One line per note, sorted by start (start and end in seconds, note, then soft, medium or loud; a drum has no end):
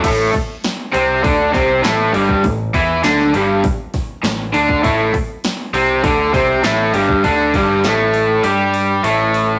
0.03 0.32 A1 loud
0.03 0.32 A2 loud
0.03 0.33 A3 loud
0.03 kick loud
0.03 open hi-hat medium
0.03 crash loud
0.33 muted overdriven electric guitar stroke medium
0.33 kick medium
0.33 open hi-hat medium
0.64 snare loud
0.64 open hi-hat medium
0.92 1.22 C2 loud
0.92 1.22 C3 medium
0.92 1.23 C4 medium
0.92 open hi-hat medium
1.23 1.53 D2 loud
1.23 1.52 D3 medium
1.23 1.52 D4 loud
1.23 kick loud
1.23 open hi-hat medium
1.52 1.82 C2 medium
1.52 1.82 C3 medium
1.52 1.82 C4 loud
1.52 kick medium
1.52 snare soft
1.52 open hi-hat medium
1.82 2.12 A1 medium
1.82 2.12 A2 medium
1.82 2.12 A3 loud
1.82 snare loud
1.82 open hi-hat medium
2.12 2.42 G1 loud
2.12 2.42 G2 medium
2.12 2.43 G3 medium
2.12 open hi-hat medium
2.29 kick medium
2.43 2.72 A1 medium
2.43 2.67 A2 medium
2.43 kick medium
2.43 open hi-hat medium
2.74 3.02 E2 loud
2.74 3.03 E3 loud
2.74 3.03 E4 loud
2.74 kick medium
2.74 open hi-hat medium
3.03 3.32 D2 medium
3.03 3.33 D3 loud
3.03 3.33 D4 loud
3.03 snare loud
3.03 open hi-hat medium
3.20 snare soft
3.34 3.62 G1 loud
3.34 3.63 G2 medium
3.34 3.63 G3 loud
3.34 open hi-hat medium
3.64 kick loud
3.64 open hi-hat medium
3.94 kick medium
3.94 snare soft
3.94 open hi-hat medium
4.24 4.52 A1 medium
4.24 4.48 A2 medium
4.24 snare loud
4.24 open hi-hat medium
4.53 4.82 D2 medium
4.53 4.82 D3 medium
4.53 4.83 D4 loud
4.53 open hi-hat medium
4.69 kick medium
4.83 5.12 A1 medium
4.83 5.12 A2 loud
4.83 5.13 A3 loud
4.83 kick medium
4.83 open hi-hat medium
5.14 muted overdriven electric guitar stroke medium
5.14 kick medium
5.14 open hi-hat medium
5.44 snare loud
5.44 open hi-hat medium
5.73 6.01 C2 loud
5.73 6.03 C3 medium
5.73 6.03 C4 loud
5.73 open hi-hat medium
6.03 6.32 D2 loud
6.03 6.33 D3 medium
6.03 6.33 D4 loud
6.03 kick loud
6.03 open hi-hat medium
6.34 6.62 C2 medium
6.34 6.63 C3 medium
6.34 6.63 C4 loud
6.34 kick medium
6.34 snare soft
6.34 open hi-hat medium
6.63 6.92 A1 medium
6.63 6.93 A2 medium
6.63 6.93 A3 loud
6.63 snare loud
6.63 open hi-hat medium
6.93 7.22 G1 loud
6.93 7.22 G2 medium
6.93 7.23 G3 loud
6.93 open hi-hat medium
7.09 kick medium
7.23 7.52 D2 loud
7.23 7.52 D3 medium
7.23 7.53 D4 loud
7.23 kick medium
7.23 open hi-hat medium
7.54 7.82 G1 loud
7.54 7.83 G2 loud
7.54 7.83 G3 loud
7.54 kick medium
7.54 open hi-hat medium
7.84 8.40 A1 loud
7.84 8.43 A2 medium
7.84 8.43 A3 loud
7.84 snare loud
7.84 open hi-hat medium
8.14 open hi-hat medium
8.43 9.00 G2 loud
8.43 9.02 G3 medium
8.43 9.03 G4 loud
8.43 open hi-hat medium
8.74 open hi-hat medium
9.03 9.59 A1 medium
9.03 9.59 A2 loud
9.03 9.59 A3 loud
9.03 open hi-hat medium
9.34 open hi-hat medium